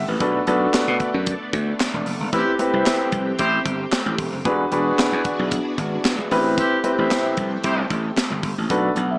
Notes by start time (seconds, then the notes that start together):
Already playing: A3 C4 G4
0.08 A1 B4
0.20 B1 B3 D4 F#4 A4 B4, kick, closed hi-hat
0.47 B1 D4 F#4 A4 B4, closed hi-hat
0.74 muted slap bass stroke, snare, clap, closed hi-hat
0.88 B2
1.00 kick, closed hi-hat
1.14 F#2
1.26 kick, closed hi-hat
1.53 D2, kick, closed hi-hat
1.80 snare, clap, closed hi-hat
1.94 E1
2.06 F#1, open hi-hat
2.20 G1
2.32 A1 C4 E4 G4 B4, kick, closed hi-hat, muted conga
2.59 C4 E4 G4 B4, closed hi-hat, muted conga
2.73 C2 E4 C5 E5
2.86 snare, clap, closed hi-hat, high conga
3.12 C2, kick, closed hi-hat, low conga
3.39 A1 E4 G4 C5, kick, closed hi-hat
3.66 G1, kick, closed hi-hat
3.92 snare, clap, closed hi-hat, high conga
4.06 A1, high conga
4.18 E1, kick, open hi-hat
4.33 F#1
4.45 E1 E3 B3 D4 F#4 G#4 B4, kick, closed hi-hat, muted conga
4.72 E1 D4 F#4 G#4 B4, closed hi-hat, muted conga
4.98 muted slap bass stroke, snare, clap, closed hi-hat, high conga
5.12 E2
5.25 kick, closed hi-hat
5.39 B1
5.51 kick, closed hi-hat, muted conga
5.78 G#1, kick, closed hi-hat
6.05 snare, clap, closed hi-hat, high conga
6.19 high conga
6.31 A1 A3 C4 E4 G4 B4, open hi-hat
6.58 C4 E4 G4, kick, closed hi-hat, muted conga
6.84 C4 E4 G4 B4, closed hi-hat, muted conga
6.98 A1 E4 C5 E5
7.11 snare, clap, closed hi-hat, high conga
7.37 C2, kick, closed hi-hat, low conga
7.64 C2 E4 G4 C5, kick, closed hi-hat, muted conga
7.90 A1, kick, closed hi-hat
8.17 snare, clap, closed hi-hat, high conga
8.31 G1, high conga
8.43 G1, kick, open hi-hat
8.58 A1
8.70 B1 B3 D4 F#4 A4 B4, kick, closed hi-hat, muted conga
8.96 B1 F#5, closed hi-hat, muted conga
9.11 E5